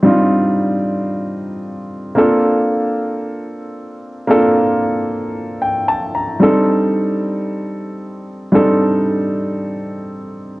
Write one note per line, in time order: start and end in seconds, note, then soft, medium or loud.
0.03 2.11 G3 medium
0.03 2.12 C4 medium
0.03 2.12 D4 medium
0.03 2.13 D#4 medium
0.03 2.13 F4 medium
2.15 4.24 A#3 medium
2.15 4.24 C4 medium
2.15 4.25 D4 medium
2.15 4.25 F4 medium
2.15 4.25 A4 medium
4.27 6.36 A#3 medium
4.27 6.37 C4 medium
4.27 6.37 D4 medium
4.27 6.37 F4 medium
4.27 6.38 A4 medium
5.62 5.86 G5 medium
5.88 6.13 A5 medium
6.15 6.39 A#5 medium
6.40 8.49 G3 medium
6.40 8.49 C4 medium
6.40 8.49 D4 medium
6.40 8.50 D#4 medium
6.40 8.50 A4 medium
8.52 10.60 G3 medium
8.52 10.60 C4 medium
8.52 10.60 D4 medium
8.52 10.60 D#4 medium
8.52 10.60 A4 medium